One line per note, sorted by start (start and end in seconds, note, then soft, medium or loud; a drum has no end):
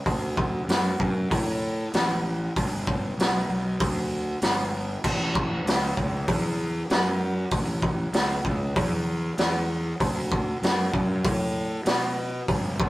0.06 0.60 D2 loud
0.06 kick loud
0.06 open hi-hat medium
0.37 kick loud
0.67 0.94 F#2 medium
0.67 snare loud
0.67 open hi-hat medium
1.00 1.26 F#2 medium
1.00 kick medium
1.31 1.84 A2 loud
1.31 kick loud
1.31 open hi-hat medium
1.93 2.47 A1 medium
1.93 snare loud
1.93 open hi-hat medium
2.56 3.09 G1 medium
2.56 kick loud
2.56 open hi-hat medium
2.87 kick medium
3.17 3.44 B1 medium
3.17 snare loud
3.17 open hi-hat medium
3.49 3.76 B1 medium
3.80 4.34 D2 loud
3.80 kick loud
3.80 open hi-hat medium
4.42 4.95 G1 loud
4.42 snare loud
4.42 open hi-hat medium
5.04 5.58 A1 medium
5.04 kick loud
5.04 crash medium
5.35 kick loud
5.65 5.92 C#2 medium
5.65 snare loud
5.65 open hi-hat medium
5.97 6.24 C#2 medium
5.97 kick medium
6.28 6.82 E2 loud
6.28 kick loud
6.28 open hi-hat medium
6.90 7.44 F#2 medium
6.90 snare loud
6.90 open hi-hat medium
7.51 8.06 A1 medium
7.51 kick loud
7.51 open hi-hat medium
7.82 kick loud
8.12 8.40 C#2 medium
8.12 snare loud
8.12 open hi-hat medium
8.45 8.72 C#2 loud
8.45 kick medium
8.76 9.30 E2 medium
8.76 kick loud
8.76 open hi-hat medium
9.38 9.92 E2 medium
9.38 snare loud
9.38 open hi-hat medium
10.00 10.54 D2 medium
10.00 kick loud
10.00 open hi-hat medium
10.32 kick loud
10.62 10.89 F#2 medium
10.62 snare loud
10.62 open hi-hat medium
10.94 11.20 F#2 medium
10.94 kick medium
11.25 11.79 A2 medium
11.25 kick loud
11.25 open hi-hat medium
11.85 12.40 B2 medium
11.85 snare loud
11.85 open hi-hat medium
12.48 12.89 G1 medium
12.48 kick loud
12.48 open hi-hat medium
12.80 kick loud